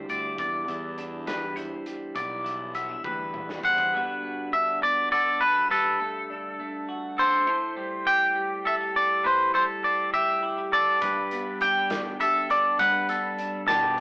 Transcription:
0.00 0.68 D3 medium
0.00 1.27 G3 medium
0.00 2.17 E4 medium
0.09 0.35 D2 medium
0.09 0.35 C4 soft
0.09 0.38 D5 medium
0.09 closed hi-hat medium
0.38 0.64 E2 medium
0.38 2.14 E2 medium
0.38 0.98 D5 medium
0.38 kick loud
0.38 closed hi-hat medium
0.67 1.71 E2 medium
0.67 1.56 E3 medium
0.67 closed hi-hat medium
0.98 2.18 D4 medium
0.98 closed hi-hat medium
1.27 1.86 G3 medium
1.27 1.56 B4 medium
1.27 snare loud
1.27 closed hi-hat medium
1.56 2.13 E3 medium
1.56 2.15 C5 medium
1.56 closed hi-hat medium
1.86 3.03 G3 soft
1.86 closed hi-hat medium
2.15 2.93 B1 loud
2.15 3.93 E2 medium
2.15 2.75 D5 medium
2.15 kick medium
2.15 closed hi-hat medium
2.44 3.32 E3 medium
2.44 closed hi-hat medium
2.75 2.89 B3 medium
2.75 3.05 E5 medium
2.75 closed hi-hat medium
2.89 3.93 D4 soft
3.04 3.56 E2 medium
3.04 3.62 G3 medium
3.04 3.63 B4 medium
3.04 kick medium
3.04 high tom medium
3.33 3.89 E3 medium
3.33 mid tom medium
3.49 snare medium
3.63 3.89 E2 medium
3.63 3.94 G3 medium
3.63 3.93 C5 medium
3.63 4.53 F#5 medium
3.63 kick medium
3.78 kick medium
3.93 5.67 G2 medium
3.93 7.48 D3 medium
3.93 4.22 B3 medium
3.93 4.53 D4 medium
3.93 5.11 F#4 medium
3.93 4.52 B4 medium
4.23 4.82 B3 medium
4.53 5.40 D4 medium
4.53 4.83 E5 medium
4.82 5.39 B3 medium
4.82 5.11 D5 medium
5.12 5.67 F#4 medium
5.12 5.70 A4 medium
5.12 5.42 D5 medium
5.40 5.55 B3 medium
5.40 5.71 B4 medium
5.55 5.70 D4 soft
5.69 7.43 G2 medium
5.69 7.19 A4 medium
5.69 6.00 B4 medium
6.00 6.59 A3 medium
6.00 6.59 A4 medium
6.30 7.17 D4 medium
6.60 7.76 A3 medium
6.89 7.44 F#4 medium
7.18 7.44 D4 medium
7.18 7.47 A4 medium
7.18 8.10 C5 loud
7.47 9.23 A2 medium
7.47 8.06 C5 medium
7.76 8.35 G3 medium
8.06 8.95 C4 medium
8.06 8.66 G4 medium
8.06 8.66 G5 loud
8.36 9.54 G3 medium
8.65 8.81 E4 medium
8.65 9.24 A4 medium
8.65 8.75 E5 medium
8.81 9.25 G4 medium
8.96 9.22 C4 soft
8.96 9.26 D5 medium
9.24 11.02 A2 medium
9.24 9.54 B4 medium
9.24 9.53 C5 medium
9.54 10.13 G3 medium
9.54 10.13 A4 medium
9.54 9.63 C5 medium
9.84 10.72 C4 medium
9.84 10.13 D5 medium
10.13 11.32 G3 medium
10.13 10.73 G4 medium
10.13 10.68 E5 loud
10.43 10.58 E4 medium
10.58 11.02 G4 medium
10.73 10.99 C4 soft
10.73 11.01 A4 medium
10.73 11.61 D5 loud
11.01 12.75 G2 medium
11.01 12.05 G2 medium
11.01 11.61 B4 medium
11.01 kick loud
11.01 closed hi-hat medium
11.31 11.90 B3 medium
11.31 closed hi-hat medium
11.61 12.49 D4 medium
11.61 12.20 G4 medium
11.61 12.20 G5 loud
11.61 closed hi-hat medium
11.90 13.09 B3 medium
11.90 snare loud
11.90 closed hi-hat loud
12.20 12.76 G4 medium
12.20 12.80 A4 medium
12.20 12.48 E5 medium
12.20 closed hi-hat medium
12.49 13.39 D4 medium
12.49 12.78 D5 medium
12.49 closed hi-hat medium
12.78 14.00 G2 medium
12.78 13.57 G3 medium
12.78 13.09 B4 medium
12.78 13.34 F#5 medium
12.78 kick loud
12.78 closed hi-hat medium
13.09 13.69 B3 medium
13.09 13.68 A4 medium
13.09 closed hi-hat medium
13.38 14.00 D4 medium
13.38 closed hi-hat medium
13.68 14.00 B2 loud
13.68 14.00 B3 medium
13.68 14.00 G4 medium
13.68 14.00 A5 loud
13.68 kick medium
13.68 snare loud
13.68 closed hi-hat medium

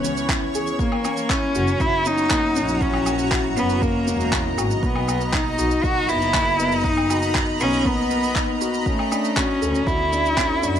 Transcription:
0.00 0.75 E3 medium
0.00 0.82 B3 medium
0.00 0.04 C#4 loud
0.00 0.29 E4 medium
0.00 0.55 G#4 medium
0.00 0.76 C#5 medium
0.00 0.78 C#6 medium
0.04 0.28 C#4 medium
0.04 shaker medium
0.17 shaker soft
0.29 0.53 E4 medium
0.29 kick loud
0.29 clap loud
0.29 shaker soft
0.55 0.69 G#4 loud
0.55 shaker medium
0.67 shaker soft
0.79 1.32 A#3 medium
0.79 0.94 A#3 medium
0.79 4.79 F#4 medium
0.79 2.79 F#5 medium
0.79 4.79 A#5 medium
0.79 kick loud
0.79 shaker soft
0.92 low woodblock medium
1.05 1.29 C#4 medium
1.05 low woodblock medium
1.05 shaker medium
1.17 shaker soft
1.30 1.82 C#4 loud
1.30 1.54 E4 medium
1.30 kick loud
1.30 clap loud
1.30 shaker soft
1.55 1.72 F#1 loud
1.55 1.79 F#4 loud
1.55 shaker medium
1.67 shaker soft
1.80 1.96 F#1 medium
1.80 2.07 E4 loud
1.80 2.05 E4 medium
1.80 kick loud
1.80 shaker soft
2.05 2.30 C#4 medium
2.05 2.83 D#4 loud
2.05 shaker medium
2.18 shaker soft
2.30 2.55 A#3 medium
2.30 kick loud
2.30 clap medium
2.56 3.50 A#1 medium
2.56 2.71 C#4 loud
2.56 shaker medium
2.68 shaker soft
2.81 3.32 C#4 loud
2.81 2.96 E4 medium
2.81 8.82 D#5 medium
2.81 kick loud
2.81 shaker soft
2.94 low woodblock medium
3.06 3.31 F#4 medium
3.06 low woodblock medium
3.06 shaker medium
3.19 shaker soft
3.31 3.46 E4 medium
3.31 kick loud
3.31 clap medium
3.31 shaker soft
3.57 3.73 F#1 medium
3.57 3.83 B3 loud
3.57 3.81 C#4 loud
3.57 shaker medium
3.69 shaker soft
3.82 4.58 A#3 loud
3.82 4.06 A#3 medium
3.82 kick loud
3.82 shaker soft
4.07 4.51 E1 medium
4.07 4.31 C#4 medium
4.07 shaker medium
4.20 shaker soft
4.32 4.57 E4 medium
4.32 kick loud
4.32 clap medium
4.32 shaker soft
4.57 4.74 G#1 medium
4.57 4.72 F#4 loud
4.57 low woodblock medium
4.57 shaker medium
4.71 shaker soft
4.83 5.39 B1 loud
4.83 4.97 A#3 medium
4.83 5.35 B3 medium
4.83 8.82 A#5 medium
4.83 8.82 B5 medium
4.83 kick loud
4.83 shaker soft
4.96 low woodblock medium
5.08 5.32 B3 medium
5.08 low woodblock medium
5.08 shaker medium
5.21 shaker soft
5.33 5.57 D#4 medium
5.33 5.85 D#4 loud
5.33 kick loud
5.33 clap medium
5.33 shaker soft
5.58 5.75 B1 loud
5.58 5.82 F#4 medium
5.58 shaker medium
5.71 shaker soft
5.83 6.00 B1 medium
5.83 6.08 D#4 medium
5.83 6.10 F#4 loud
5.83 kick loud
5.83 shaker soft
6.09 7.41 F#1 loud
6.09 6.33 B3 medium
6.09 6.86 E4 loud
6.09 shaker medium
6.22 shaker soft
6.34 6.58 A#3 medium
6.34 kick loud
6.34 clap medium
6.34 shaker soft
6.59 6.74 B3 loud
6.59 shaker medium
6.72 shaker soft
6.84 7.35 D#4 loud
6.84 6.99 D#4 medium
6.84 kick loud
6.84 shaker soft
6.97 low woodblock medium
7.10 7.34 F#4 medium
7.10 low woodblock medium
7.10 shaker medium
7.22 shaker soft
7.35 7.49 D#4 medium
7.35 kick loud
7.35 clap medium
7.35 shaker soft
7.60 7.76 B1 loud
7.60 7.84 B3 loud
7.60 7.88 C#4 loud
7.60 shaker medium
7.73 shaker soft
7.85 8.09 A#3 medium
7.85 8.61 B3 loud
7.85 kick loud
7.85 shaker soft
8.11 8.35 B3 medium
8.11 shaker medium
8.23 shaker soft
8.36 8.60 D#4 medium
8.36 kick loud
8.36 clap medium
8.36 shaker soft
8.61 8.76 F#4 loud
8.61 shaker medium
8.74 shaker soft
8.86 9.38 A3 loud
8.86 9.01 C#4 medium
8.86 10.80 F#4 medium
8.86 10.80 C#6 medium
8.86 kick loud
8.86 shaker soft
8.99 low woodblock medium
9.12 9.36 D4 medium
9.12 low woodblock medium
9.12 shaker medium
9.24 shaker soft
9.37 9.88 C#4 loud
9.37 9.61 F#4 medium
9.37 kick loud
9.37 clap loud
9.61 9.78 D2 loud
9.61 9.86 A4 loud
9.61 shaker medium
9.75 shaker soft
9.87 10.03 D2 medium
9.87 10.80 E4 loud
9.87 10.11 F#4 medium
9.87 kick loud
9.87 shaker soft
10.12 10.36 D4 medium
10.12 shaker medium
10.25 shaker soft
10.37 10.61 C#4 medium
10.37 kick medium
10.37 clap medium
10.37 shaker soft
10.62 10.80 F#2 loud
10.62 10.77 D4 loud
10.62 shaker medium
10.75 shaker soft

